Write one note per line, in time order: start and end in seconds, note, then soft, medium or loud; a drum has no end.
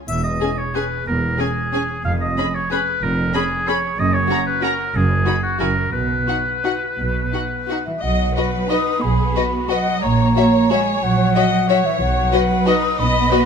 0.08 0.35 E1 soft
0.08 0.35 E2 soft
0.08 0.23 E5 medium
0.08 triangle soft
0.23 0.59 D#5 medium
0.41 0.49 C#4 soft
0.41 0.49 G#4 soft
0.41 0.49 G#5 soft
0.58 0.77 C#5 soft
0.74 0.82 C#4 soft
0.74 0.83 G#4 soft
0.74 1.07 B4 soft
0.74 0.83 G#5 soft
1.06 1.34 E1 soft
1.06 1.33 E2 soft
1.06 1.41 A#4 medium
1.39 1.48 C#4 soft
1.39 1.47 G#4 soft
1.39 2.04 G#4 medium
1.39 1.48 G#5 soft
1.73 1.81 C#4 soft
1.73 1.81 G#4 soft
1.73 1.82 G#5 soft
2.04 2.32 F1 soft
2.04 2.32 F2 soft
2.04 2.12 F5 medium
2.21 2.56 D#5 medium
2.38 2.46 C#4 soft
2.38 2.46 G#4 soft
2.38 2.46 B5 soft
2.55 2.70 C#5 medium
2.71 2.80 C#4 soft
2.71 2.79 G#4 soft
2.71 3.04 B4 medium
2.71 2.80 B5 soft
3.02 3.29 F1 medium
3.02 3.29 F2 medium
3.02 3.34 A#4 medium
3.35 3.43 C#4 soft
3.35 3.70 G#4 medium
3.35 3.43 G#4 soft
3.35 3.43 B5 soft
3.68 3.76 C#4 soft
3.68 3.76 G#4 soft
3.68 4.00 C#5 medium
3.68 3.76 B5 soft
3.98 4.25 F#1 medium
3.98 4.24 F#2 medium
3.98 4.15 D#5 medium
4.13 4.46 C#5 medium
4.30 4.38 C#4 soft
4.30 4.38 F#4 soft
4.30 4.39 A#5 soft
4.46 4.64 B4 medium
4.63 4.71 C#4 soft
4.63 4.71 F#4 soft
4.63 4.97 A#4 medium
4.63 4.72 A#5 soft
4.94 5.21 F#1 medium
4.94 5.21 F#2 medium
4.94 5.42 G#4 medium
5.26 5.34 D#4 soft
5.26 5.34 F#4 soft
5.26 5.34 B5 soft
5.43 5.59 F#4 medium
5.59 5.87 F#1 soft
5.59 5.88 F#2 soft
5.59 5.68 E4 soft
5.59 5.67 F#4 soft
5.59 5.92 A#4 medium
5.59 5.68 G#5 soft
5.92 6.22 B1 soft
5.92 6.22 B2 soft
5.92 7.83 B4 soft
6.28 6.36 D#4 soft
6.28 6.36 F#4 soft
6.28 6.36 F#5 soft
6.64 6.72 D#4 soft
6.64 6.73 F#4 soft
6.64 6.73 F#5 soft
6.99 7.28 B1 soft
6.99 7.28 B2 soft
7.34 7.42 D#4 soft
7.34 7.42 F#4 soft
7.34 7.42 F#5 soft
7.69 7.77 D#4 soft
7.69 7.77 F#4 soft
7.69 7.78 F#5 soft
7.86 7.93 E3 soft
7.86 8.04 E5 soft
8.02 8.30 B1 soft
8.02 8.68 F#3 soft
8.02 8.34 D#5 medium
8.02 8.70 F#5 medium
8.36 8.45 F#4 soft
8.36 9.01 B4 medium
8.36 8.45 B4 soft
8.36 8.44 D#5 soft
8.69 9.02 D#4 soft
8.69 8.79 F#4 soft
8.69 8.79 B4 soft
8.69 8.78 D#5 soft
8.69 9.03 D#6 medium
9.02 9.30 B1 soft
9.02 9.70 B3 medium
9.02 9.35 G#4 soft
9.02 9.71 B5 medium
9.36 9.70 F#4 soft
9.36 9.44 F#4 soft
9.36 9.44 B4 soft
9.36 9.44 D#5 soft
9.69 10.02 F#3 medium
9.69 9.79 F#4 soft
9.69 9.79 B4 soft
9.69 10.03 D#5 medium
9.69 9.78 D#5 soft
9.69 10.01 F#5 medium
10.02 10.30 A#1 medium
10.02 10.71 A#3 medium
10.02 10.35 C#5 medium
10.02 10.72 A#5 medium
10.36 10.45 F#4 soft
10.36 11.34 C#5 medium
10.36 10.45 C#5 soft
10.36 10.45 E5 soft
10.70 11.03 G#3 medium
10.70 10.79 F#4 soft
10.70 10.79 C#5 soft
10.70 10.80 E5 soft
10.70 11.05 G#5 medium
11.03 11.30 A#1 soft
11.03 11.84 F#3 medium
11.03 11.87 F#5 medium
11.36 11.44 F#4 soft
11.36 11.44 C#5 soft
11.36 11.69 D#5 medium
11.36 11.44 E5 soft
11.69 11.78 F#4 soft
11.69 12.32 C#5 medium
11.69 11.78 C#5 soft
11.69 11.78 E5 soft
11.85 12.01 E3 medium
11.85 12.00 E5 medium
12.01 12.27 B1 medium
12.01 12.67 F#3 medium
12.01 12.69 F#5 medium
12.33 12.41 F#4 soft
12.33 12.41 B4 soft
12.33 12.99 B4 medium
12.33 12.41 D#5 soft
12.67 12.99 D#4 medium
12.67 12.75 F#4 soft
12.67 12.75 B4 soft
12.67 12.75 D#5 soft
12.67 13.01 D#6 medium
12.99 13.26 B1 medium
12.99 13.46 B3 medium
12.99 13.32 D#5 medium
12.99 13.46 B5 medium
13.32 13.40 F#4 soft
13.32 13.46 B4 medium
13.32 13.40 B4 soft
13.32 13.40 D#5 soft